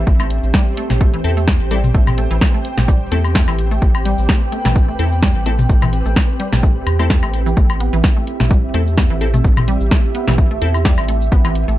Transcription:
Already playing: synth texture C4, ambient pad C4 G4 E5
0.07 analog synth bass A1, synth texture C5, kick, shaker
0.20 synth arpeggio sound A3, low woodblock
0.30 closed hi-hat, shaker
0.40 analog synth bass A1, ambient pad G5, shaker
0.54 synth arpeggio sound G3, kick, snare, shaker
0.77 synth arpeggio sound A3, closed hi-hat, shaker
0.90 analog synth bass A1, snare, mid tom, shaker
1.01 synth arpeggio sound A3, kick, shaker
1.13 synth arpeggio sound E3
1.24 analog synth bass E2, synth stab C4 E4 A4, closed hi-hat
1.37 synth arpeggio sound A3, shaker
1.48 kick, snare, shaker
1.60 analog synth bass A1
1.71 synth arpeggio sound G3, synth stab C4 E4 A4, closed hi-hat, shaker
1.84 mid tom, shaker
1.94 analog synth bass A1, synth arpeggio sound A3, kick, shaker
2.07 mid tom, low woodblock
2.18 synth arpeggio sound A3, closed hi-hat, shaker
2.31 analog synth bass A1, synth arpeggio sound E3, shaker
2.41 kick, snare, shaker
2.54 synth arpeggio sound A3
2.65 closed hi-hat, shaker
2.78 analog synth bass A1, snare, mid tom, shaker
2.88 synth arpeggio sound G3, kick, shaker
3.12 analog synth bass E2, synth arpeggio sound A3, synth stab C4 E4 A4, closed hi-hat
3.24 low woodblock, shaker
3.35 synth arpeggio sound A3, kick, snare, shaker
3.48 analog synth bass A1, synth arpeggio sound E3, low woodblock
3.59 closed hi-hat, shaker
3.71 synth arpeggio sound A3, shaker
3.82 analog synth bass A1, synth texture B4, kick, shaker
3.95 low woodblock
4.05 synth arpeggio sound G3, closed hi-hat, shaker
4.18 analog synth bass A1, shaker
4.29 synth arpeggio sound A3, kick, snare, shaker
4.52 synth arpeggio sound A3, closed hi-hat, shaker
4.65 analog synth bass A1, synth arpeggio sound E3, snare, mid tom, shaker
4.76 kick, shaker
4.88 synth arpeggio sound A3
4.99 analog synth bass E2, synth stab C4 E4 A4, closed hi-hat
5.12 shaker
5.23 synth arpeggio sound G3, kick, snare, shaker
5.35 analog synth bass A1
5.46 synth arpeggio sound A3, synth stab C4 E4 A4, closed hi-hat, shaker
5.59 mid tom, shaker
5.69 analog synth bass A1, synth arpeggio sound A3, kick, shaker
5.82 synth arpeggio sound E3, mid tom, low woodblock
5.93 closed hi-hat, shaker
6.06 analog synth bass A1, synth arpeggio sound A3, shaker
6.16 kick, snare, shaker
6.40 synth arpeggio sound G3, closed hi-hat, shaker
6.53 analog synth bass A1, snare, mid tom, shaker
6.63 synth arpeggio sound A3, kick, shaker
6.87 analog synth bass E2, closed hi-hat, low woodblock, shaker
6.99 synth arpeggio sound A3, synth stab C4 E4 A4, low woodblock, shaker
7.10 synth arpeggio sound A3, kick, snare, shaker
7.23 analog synth bass A1, synth arpeggio sound A3, low woodblock
7.34 closed hi-hat, shaker
7.46 synth arpeggio sound E3, shaker
7.57 analog synth bass A1, synth arpeggio sound A3, synth texture E4 E5, kick, shaker
7.70 low woodblock
7.80 synth arpeggio sound B3, closed hi-hat, shaker
7.90 analog synth bass A1, synth arpeggio sound E3, ambient pad E5, shaker
8.04 kick, snare, shaker
8.17 synth arpeggio sound A3
8.27 closed hi-hat, shaker
8.40 analog synth bass A1, snare, mid tom, shaker
8.51 synth arpeggio sound G3, kick, shaker
8.74 analog synth bass E2, synth arpeggio sound A3, synth stab C4 E4 A4, closed hi-hat
8.87 shaker
8.97 synth arpeggio sound B3, kick, snare, shaker
9.10 analog synth bass A1, synth arpeggio sound E3
9.21 synth stab C4 E4 A4, closed hi-hat, shaker
9.34 synth arpeggio sound A3, mid tom, shaker
9.44 analog synth bass A1, kick, shaker
9.57 mid tom, low woodblock
9.68 synth arpeggio sound G3, closed hi-hat, shaker
9.81 analog synth bass A1, shaker
9.91 synth arpeggio sound A3, kick, snare, shaker
10.15 synth arpeggio sound B3, closed hi-hat, shaker
10.27 analog synth bass A1, synth arpeggio sound E3, snare, mid tom, shaker
10.38 kick, shaker
10.51 synth arpeggio sound A3
10.62 analog synth bass E2, synth stab C4 E4 A4, closed hi-hat
10.74 low woodblock, shaker
10.85 synth arpeggio sound G3, kick, snare, shaker
10.98 analog synth bass A1, low woodblock
11.09 synth arpeggio sound A3, closed hi-hat, shaker
11.21 shaker
11.32 analog synth bass A1, synth arpeggio sound B3, synth texture G4, kick, shaker
11.45 synth arpeggio sound E3, low woodblock
11.55 closed hi-hat, shaker
11.68 analog synth bass A1, synth arpeggio sound A3, shaker

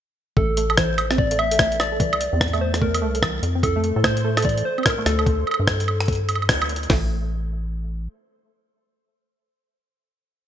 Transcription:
0.37 acid bass A1, synth pluck A3, soft synth lead A4, kick
0.57 synth pluck A3, closed hi-hat
0.70 synth pluck A4, high woodblock
0.78 synth pluck E3, soft synth lead C5, kick, cross-stick, closed hi-hat
0.98 closed hi-hat, high woodblock
1.11 synth pluck C4, cross-stick
1.18 synth pluck A2, soft synth lead D5, kick
1.31 synth pluck A3, closed hi-hat
1.39 synth pluck A3, soft synth lead E5, high woodblock
1.51 synth pluck A4, closed hi-hat
1.59 synth pluck A3, kick, cross-stick
1.72 closed hi-hat
1.80 synth pluck A3, soft synth lead D5, cross-stick, high woodblock
1.92 synth pluck A4
2.00 acid bass C2, synth pluck E3, kick, closed hi-hat
2.13 high woodblock
2.21 closed hi-hat
2.33 acid bass E2, synth pluck C4
2.41 synth pluck A2, kick, cross-stick, closed hi-hat
2.48 closed hi-hat
2.53 synth pluck A3, closed hi-hat, high woodblock
2.61 synth pluck A3, soft synth lead C5
2.74 synth pluck A4, cross-stick, closed hi-hat
2.81 synth pluck A3, soft synth lead A#4, kick
2.94 closed hi-hat, high woodblock
3.02 acid bass C2, synth pluck A3
3.15 synth pluck A4, closed hi-hat
3.22 synth pluck E3, kick, cross-stick, high woodblock
3.43 acid bass F2, closed hi-hat
3.55 synth pluck C4
3.63 synth pluck A2, soft synth lead A4, synth texture C5, kick, closed hi-hat, high woodblock
3.76 synth pluck A3
3.84 synth pluck A3, closed hi-hat
3.96 acid bass A2, synth pluck A4
4.04 synth pluck A3, soft synth lead C5, kick, cross-stick, high woodblock
4.17 closed hi-hat
4.24 synth pluck A3
4.37 synth pluck A4, cross-stick, closed hi-hat, high woodblock
4.42 synth pluck E3, soft synth lead D5, kick, closed hi-hat
4.49 closed hi-hat
4.58 closed hi-hat
4.65 soft synth lead C5
4.78 synth pluck C4, high woodblock
4.83 synth pluck A2, soft synth lead A#4, kick, cross-stick, closed hi-hat, high woodblock
4.90 high woodblock
4.98 synth pluck A3
5.06 acid bass D2, synth pluck A3, soft synth lead A4, cross-stick, closed hi-hat
5.19 synth pluck A4, high woodblock
5.26 kick, closed hi-hat
5.47 high woodblock
5.51 high woodblock
5.54 high woodblock
5.60 acid bass G2
5.67 kick, cross-stick
5.80 closed hi-hat
5.88 high woodblock
6.01 cross-stick, closed hi-hat
6.06 kick, closed hi-hat
6.08 closed hi-hat
6.13 closed hi-hat
6.15 closed hi-hat
6.29 closed hi-hat, high woodblock
6.35 high woodblock
6.42 high woodblock
6.49 acid bass D2, kick, cross-stick, closed hi-hat
6.62 high woodblock
6.69 closed hi-hat
6.76 closed hi-hat
6.83 closed hi-hat
6.90 acid bass A1, synth pluck A3, kick, snare, open hi-hat

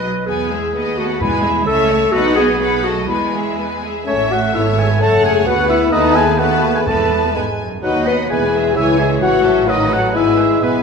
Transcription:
Already playing: clarinet B4
0.04 cello section F#3
0.26 double bass section E2, viola section B3, clarinet G#4, violin section B4 G#5
0.51 viola section G#3, violin section G#4 E5
0.74 double bass section D#2, cello section B3, viola section B3, violin section B4 D#5
0.97 viola section A3, clarinet F#4, violin section A4 F#5
1.20 double bass section E2, timpani E2, cello section G#3, viola section B3, clarinet E4, violin section B4 G#5
1.44 viola section G#3, violin section G#4 E5
1.66 double bass section C#2, cello section A3, viola section C#4, clarinet A4, violin section C#5 E5
1.90 viola section A3, violin section C#5 E5
2.12 double bass section B1, cello section B3, viola section D#4, clarinet F#4, violin section B4 F#5
2.35 viola section B3, violin section F#4 D#5, clarinet G#4
2.60 cello section F#3, viola section B3, violin section B4 F#5
2.83 viola section A3, clarinet F#4, violin section A4 D#5
3.08 double bass section E2, cello section G#3, viola section B3, clarinet E4, violin section B4 G#5
3.33 viola section G#3, violin section G#4 E5
3.57 viola section B3, violin section B4 G#5
3.82 viola section G#3, violin section G#4 E5
4.05 double bass section A1, cello section A2, viola section A3, bassoon A3, french horn section C#4, clarinet A4, oboe C#5, violin section E5
4.31 french horn section F#4, oboe F#5
4.54 double bass section G#1, cello section G#2, bassoon A3, viola section B3, french horn section E4, clarinet A4, violin section C#5 E5, oboe E5
4.76 french horn section G#4, oboe G#5
5.00 double bass section F#1, cello section F#2, bassoon A3, viola section A3, french horn section A4, clarinet C#5, violin section C#5 F#5, oboe A5
5.23 french horn section G#4, oboe G#5
5.46 cello section D2, double bass section D2, bassoon B3, viola section B3, french horn section F#4, violin section B4 F#5, clarinet B4, oboe F#5
5.69 french horn section E4, oboe E5
5.91 cello section D#2, double bass section D#2, bassoon A3, viola section B3, french horn section D#4, violin section B4 A5, clarinet B4, oboe D#5
6.15 french horn section G#4, oboe G#5
6.39 bassoon A3, viola section B3, french horn section F#4, clarinet B4, violin section B4 A5, oboe F#5
6.75 french horn section G#4, oboe G#5
6.87 double bass section E1, timpani E2, cello section E2, bassoon A3, viola section B3, french horn section A4, clarinet B4, violin section B4 A5, oboe A5
7.34 cello section G#2, bassoon G#3, viola section B3, violin section B4 G#5, clarinet B4
7.59 cello section F#2
7.83 cello section D#2, double bass section D#2, bassoon F#3, viola section D#4, french horn section F#4, clarinet B4, violin section B4 D#5, oboe F#5
8.06 viola section B3, french horn section B4, violin section D#5 F#5, oboe B5
8.30 double bass section E1, cello section E2, bassoon E3, viola section B3, french horn section G#4, violin section B4 G#5, oboe G#5
8.53 viola section G#3, violin section G#4 E5
8.76 double bass section C#2, cello section C#2, viola section E3, french horn section E4, clarinet C#5, violin section C#5 G#5, oboe E5
8.99 viola section G#3, french horn section G#4, violin section G#4 E5, oboe G#5
9.21 double bass section A1, cello section A2, viola section E3, french horn section F#4, violin section C#5 F#5, oboe F#5
9.44 viola section F#3, violin section A4 E5
9.67 viola section D#3, bassoon F#3, french horn section D#4, clarinet B4, violin section B4 D#5, oboe D#5
9.90 viola section F#3, french horn section F#4, violin section A4 F#5, oboe F#5
10.14 double bass section G#1, cello section G#2, bassoon G#3, viola section B3, french horn section E4, violin section B4 G#5, oboe E5
10.38 viola section G#3, violin section G#4 E5
10.62 double bass section B1, cello section B2, viola section B3, french horn section B3, violin section B4 G#5, oboe B4, clarinet E5

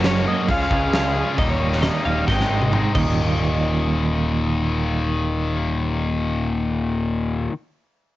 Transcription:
Already playing: picked electric bass F#1, clean electric guitar F#2 A#3
0.03 distorted electric guitar F#3 A#3 C#4 F#4, clean electric guitar C#5, snare, open hi-hat
0.26 distorted electric guitar F#3 A#3 C#4 F#4, clean electric guitar D#5
0.48 picked electric bass C#2, distorted electric guitar C#3 G#3 C#4 F4 G#4, clean electric guitar F5, kick, open hi-hat
0.63 clean electric guitar F5
0.70 picked electric bass C#2, distorted electric guitar C#4 F4 G#4, kick
0.92 distorted electric guitar C#3 G#3 C#4 F4 G#4, clean electric guitar F5, snare, open hi-hat
1.15 clean electric guitar G#4
1.37 picked electric bass D#1, distorted electric guitar D#2 A#2 D#3 G3 A#3 D#4, clean electric guitar D#5, kick, open hi-hat
1.50 clean electric guitar C#5
1.60 distorted electric guitar D#3 G3 A#3 D#4
1.72 snare
1.82 distorted electric guitar D#3 G3 A#3 D#4, clean electric guitar D#5, snare, open hi-hat
2.04 picked electric bass D#1, distorted electric guitar D#3 G3 A#3 D#4, clean electric guitar F5
2.26 picked electric bass G#1, distorted electric guitar G#2 D#3 G#3 C4 D#4, clean electric guitar G5, kick, snare
2.40 snare
2.49 picked electric bass G#1, distorted electric guitar G#3 C4 D#4
2.62 high tom
2.72 distorted electric guitar G#2 D#3 G#3 C4 D#4, mid tom
2.93 picked electric bass D#1, distorted electric guitar D#2 A#2, clean electric guitar G3 A#3 D#4 D#5, kick, crash
2.97 distorted electric guitar D#3

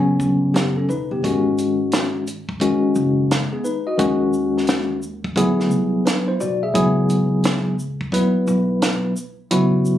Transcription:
Already playing: tine electric piano C#3 F#3 B3 C#4
0.20 upright bass G1, kick, shaker
0.54 upright bass F#1, tine electric piano B3 G4, snare, closed hi-hat
0.77 tine electric piano C#4 A4
0.89 upright bass E1, tine electric piano D#4 B4, shaker
1.11 upright bass F#1, tine electric piano B3 G4
1.23 upright bass G#1, tine electric piano D#3 G#3 C#4 F#4, kick, closed hi-hat
1.58 closed hi-hat, shaker
1.92 snare, closed hi-hat
2.27 closed hi-hat, shaker
2.49 kick
2.60 tine electric piano D#3 G#3 C#4 F#4, kick, closed hi-hat
2.95 upright bass F#1, shaker
3.31 snare, closed hi-hat
3.53 tine electric piano B3 G#4
3.64 tine electric piano D#4 B4, shaker
3.87 tine electric piano F#4 D#5
3.98 upright bass D#2, tine electric piano D#3 G#3 C#4 F#4, kick, closed hi-hat
4.33 shaker
4.58 snare
4.67 snare, closed hi-hat
5.02 shaker
5.24 kick
5.36 upright bass D2, tine electric piano F#3 B3 E4 G#4, kick, closed hi-hat
5.60 snare
5.71 upright bass C2, shaker
6.06 tine electric piano D4 B4, snare, closed hi-hat
6.28 tine electric piano E4 C5
6.40 upright bass B1, tine electric piano F#4 D5, shaker
6.63 tine electric piano G#4 E5
6.74 upright bass C#2, tine electric piano F#3 B3 E4 G#4, kick, closed hi-hat
7.10 closed hi-hat, shaker
7.44 snare, closed hi-hat
7.79 shaker
8.01 kick
8.12 tine electric piano F#3 B3 E4 B4, kick, closed hi-hat
8.47 upright bass B1, shaker
8.82 snare, closed hi-hat
9.17 shaker
9.51 upright bass C#2, tine electric piano F#3 B3 E4 F#4, closed hi-hat
9.85 shaker

